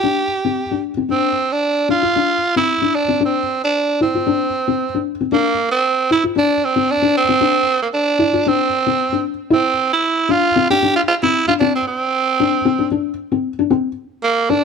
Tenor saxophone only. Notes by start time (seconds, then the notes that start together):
Already playing: G4
1.11 C4
1.52 D4
1.90 F4
2.57 E4
2.95 D4
3.25 C4
3.64 D4
4.02 C4
5.33 A#3
5.71 C4
6.12 E4
6.38 D4
6.65 C4
6.91 D4
7.17 C4
7.82 A#3
7.93 D4
8.48 C4
9.53 C4
9.93 E4
10.30 F4
10.71 G4
10.96 F4
11.08 F4
11.23 E4
11.48 F4
11.60 D4
11.75 C4
11.88 C4
14.23 A#3
14.50 D4